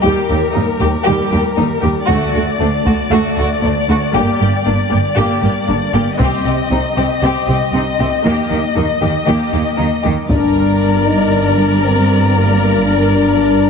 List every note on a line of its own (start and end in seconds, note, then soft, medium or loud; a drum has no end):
0.04 0.12 D#2 soft
0.04 0.13 D#2 medium
0.04 0.28 G3 soft
0.04 0.28 G4 soft
0.04 2.05 A#4 soft
0.29 0.37 D#2 soft
0.29 0.38 D#2 soft
0.29 0.37 G3 soft
0.29 0.37 G4 soft
0.53 0.64 D#2 soft
0.53 0.64 G3 soft
0.53 0.61 D#4 soft
0.81 0.89 D#2 soft
0.81 0.89 G3 soft
0.81 0.89 G4 soft
1.05 1.15 D#2 medium
1.05 1.30 G3 medium
1.05 1.30 G4 medium
1.31 1.40 D#2 soft
1.31 1.40 G3 soft
1.31 1.39 G4 soft
1.57 1.65 D#2 soft
1.57 1.66 D#2 soft
1.57 1.67 G3 soft
1.57 1.65 D#4 soft
1.82 1.91 D#2 soft
1.82 1.92 D#2 soft
1.82 1.93 G3 soft
1.82 1.90 G4 soft
2.08 2.17 D2 medium
2.08 2.18 D2 medium
2.08 2.34 A3 medium
2.08 2.32 F#4 medium
2.08 6.16 D5 soft
2.08 taiko soft
2.34 2.42 D2 soft
2.34 2.44 D2 soft
2.34 2.44 A3 soft
2.34 2.43 F#4 soft
2.60 2.68 D2 soft
2.60 2.69 D2 soft
2.60 2.69 A3 soft
2.60 2.69 D4 soft
2.85 2.93 D2 soft
2.85 2.94 D2 soft
2.85 2.95 A3 soft
2.85 2.95 F#4 soft
2.85 taiko soft
3.11 3.19 D2 medium
3.11 3.20 D2 medium
3.11 3.36 A3 medium
3.11 3.36 F#4 medium
3.37 3.45 D2 soft
3.37 3.46 D2 soft
3.37 3.46 A3 soft
3.37 3.46 F#4 soft
3.63 3.71 D2 soft
3.63 3.72 D2 soft
3.63 3.71 A3 soft
3.63 3.72 D4 soft
3.88 3.97 D2 soft
3.88 3.96 A3 soft
3.88 3.98 F#4 soft
4.14 4.23 G1 medium
4.14 4.22 G2 medium
4.14 4.38 A#3 soft
4.14 4.39 G4 medium
4.40 4.49 G1 soft
4.40 4.49 G2 soft
4.40 4.48 A#3 soft
4.40 4.48 G4 soft
4.65 4.74 G1 soft
4.65 4.74 G2 soft
4.65 4.73 A#3 soft
4.65 4.74 D4 soft
4.90 5.00 G1 soft
4.90 5.00 G2 soft
4.90 4.99 A#3 soft
4.90 4.98 G4 soft
5.16 5.25 G1 medium
5.16 5.25 G2 soft
5.16 5.41 A#3 soft
5.16 5.40 G4 medium
5.42 5.51 G1 soft
5.42 5.50 G2 soft
5.42 5.50 A#3 soft
5.42 5.50 G4 soft
5.68 5.77 G1 soft
5.68 5.76 G2 soft
5.68 5.76 A#3 soft
5.68 5.76 D4 soft
5.94 6.02 G1 soft
5.94 6.02 G2 soft
5.94 6.02 A#3 soft
5.94 6.02 G4 soft
6.19 6.28 C2 soft
6.19 6.28 C3 soft
6.19 6.44 C4 soft
6.19 6.44 G4 soft
6.19 10.06 D#5 soft
6.19 taiko soft
6.45 6.54 C2 soft
6.45 6.53 C3 soft
6.45 6.54 C4 soft
6.45 6.54 G4 soft
6.71 6.79 C2 soft
6.71 6.79 C3 soft
6.71 6.79 C4 soft
6.71 6.80 D#4 soft
6.97 7.05 C2 soft
6.97 7.05 C3 soft
6.97 7.05 C4 soft
6.97 7.05 G4 soft
7.22 7.30 C2 soft
7.22 7.31 C3 soft
7.22 7.47 C4 soft
7.22 7.46 G4 soft
7.47 7.55 C2 soft
7.47 7.56 C3 soft
7.47 7.56 C4 soft
7.47 7.57 G4 soft
7.73 7.82 C2 soft
7.73 7.83 C3 soft
7.73 7.81 C4 soft
7.73 7.83 D#4 soft
7.99 8.07 C2 soft
7.99 8.08 C3 soft
7.99 8.08 C4 soft
7.99 8.07 G4 soft
8.24 8.33 D#2 soft
8.24 8.34 D#3 soft
8.24 8.48 A#3 soft
8.24 8.49 G4 soft
8.50 8.58 D#2 soft
8.50 8.59 D#3 soft
8.50 8.58 A#3 soft
8.50 8.59 G4 soft
8.75 8.84 D#2 soft
8.75 8.84 D#3 soft
8.75 8.83 A#3 soft
8.75 8.83 D#4 soft
9.01 9.10 D#2 soft
9.01 9.10 D#3 soft
9.01 9.09 A#3 soft
9.01 9.09 G4 soft
9.26 9.35 D#2 soft
9.26 9.35 D#3 soft
9.26 9.51 A#3 soft
9.26 9.51 G4 soft
9.52 9.60 D#2 soft
9.52 9.61 D#3 soft
9.52 9.61 A#3 soft
9.52 9.61 G4 soft
9.77 9.87 D#2 soft
9.77 9.86 D#3 soft
9.77 9.86 A#3 soft
9.77 9.85 D#4 soft
10.04 10.12 D#2 soft
10.04 10.13 D#3 soft
10.04 10.12 A#3 soft
10.04 10.12 G4 soft
10.29 13.70 G1 soft
10.29 13.70 G2 soft
10.29 11.03 D4 medium
10.29 13.70 A#4 soft
10.29 13.70 D5 soft
10.29 taiko soft
11.05 11.32 D#4 medium
11.31 11.82 D4 medium
11.84 12.35 C4 soft
12.35 12.86 A#3 medium
12.85 13.70 D4 medium